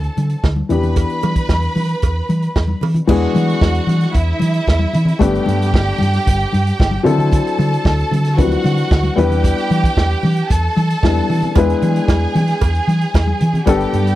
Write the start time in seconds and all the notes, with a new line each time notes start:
Already playing: E3 C4 D4 F#4 A4 A5
0.03 closed hi-hat
0.17 D3, closed hi-hat, high conga
0.29 closed hi-hat
0.44 D2, kick, snare, cowbell, muted conga
0.56 high conga
0.69 E2 E3 B3 D4 G4 B4 B5, closed hi-hat, low conga
0.83 closed hi-hat, low conga
0.96 kick, closed hi-hat, cowbell
1.10 closed hi-hat
1.22 E3, closed hi-hat, cowbell, muted conga, high conga
1.36 kick, closed hi-hat
1.49 E2, kick, snare, cowbell, muted conga, high conga
1.62 closed hi-hat
1.76 E3, open hi-hat, high conga, low conga
1.89 closed hi-hat
2.02 E2, kick, closed hi-hat, cowbell
2.29 E3, closed hi-hat, high conga
2.42 closed hi-hat
2.56 E2, kick, snare, cowbell, muted conga
2.68 high conga
2.81 E3, open hi-hat, cowbell, muted conga, low conga
2.94 closed hi-hat, low conga
3.07 E2 E3 G#3 B3 D4 F#4 G#4 F#5, kick, crash, muted conga
3.35 E3, closed hi-hat, muted conga, high conga
3.49 closed hi-hat
3.61 E2, kick, snare, high conga
3.74 closed hi-hat
3.87 E3, closed hi-hat, high conga, low conga
4.01 snare, closed hi-hat
4.13 E2 E4 E5, kick, closed hi-hat, muted conga
4.40 E3, closed hi-hat, muted conga, high conga
4.54 closed hi-hat
4.67 E2, kick, snare, muted conga
4.79 high conga
4.94 E3, closed hi-hat, muted conga, low conga
5.05 closed hi-hat, low conga
5.19 G1 G3 A3 B3 D4 G4 G5, kick, closed hi-hat, muted conga
5.35 closed hi-hat
5.46 G2, closed hi-hat, muted conga, high conga
5.62 closed hi-hat
5.72 G1, kick, snare, muted conga, high conga
5.99 G2, closed hi-hat, muted conga, high conga, low conga
6.13 snare, closed hi-hat
6.26 G1, kick, closed hi-hat, muted conga
6.40 closed hi-hat
6.53 G2, closed hi-hat, high conga
6.67 closed hi-hat
6.79 G1, kick, snare, muted conga
6.91 high conga
7.03 D3 F#3 C4 D4 E4 A4 A5, closed hi-hat, muted conga, low conga
7.19 closed hi-hat, low conga
7.32 kick, closed hi-hat, muted conga
7.47 closed hi-hat
7.59 D3, closed hi-hat, muted conga, high conga
7.74 closed hi-hat
7.84 D2, kick, snare, high conga
7.99 closed hi-hat
8.11 D3, closed hi-hat, muted conga, high conga, low conga
8.24 snare, closed hi-hat
8.37 D2 F3 C4 D4 E4 F#4 B4 F#5, kick, closed hi-hat, muted conga
8.44 F#3
8.51 closed hi-hat
8.64 D3, closed hi-hat, muted conga, high conga
8.77 closed hi-hat
8.91 D2, kick, snare, muted conga
9.03 closed hi-hat, high conga
9.16 E2 G3 B3 D4 E4 G4 B4 G5, closed hi-hat, muted conga, low conga
9.30 closed hi-hat, low conga
9.43 kick, closed hi-hat, muted conga
9.58 closed hi-hat
9.70 E3, closed hi-hat, muted conga, high conga
9.84 kick, closed hi-hat
9.97 E2, kick, snare, muted conga, high conga
10.11 closed hi-hat
10.23 E3, open hi-hat, muted conga, high conga, low conga
10.37 closed hi-hat
10.49 E2 A4 A5, kick, closed hi-hat, muted conga
10.77 E3, closed hi-hat, muted conga, high conga
10.90 closed hi-hat
11.03 E2 G3 B3 D4 E4 B4, kick, snare, muted conga
11.15 closed hi-hat, high conga
11.29 E3, open hi-hat, low conga
11.43 closed hi-hat, low conga
11.55 E2 G#3 B3 D4 E4 G#4 B4 G#5, kick, closed hi-hat, cowbell, muted conga
11.70 closed hi-hat
11.82 E3, closed hi-hat, muted conga, high conga
11.96 closed hi-hat
12.08 E2, kick, snare, cowbell, high conga
12.35 E3, closed hi-hat, muted conga, high conga, low conga
12.47 snare, closed hi-hat
12.61 E2, kick, closed hi-hat, cowbell, muted conga
12.75 closed hi-hat
12.87 E3, closed hi-hat, high conga
13.01 closed hi-hat
13.14 E2, kick, snare, cowbell, muted conga
13.27 high conga
13.40 E3, closed hi-hat, muted conga, low conga
13.54 closed hi-hat, low conga
13.66 G1 G3 B3 D4 G4 A4 G5, kick, closed hi-hat, cowbell
13.80 closed hi-hat
13.93 G2, closed hi-hat, high conga
14.07 closed hi-hat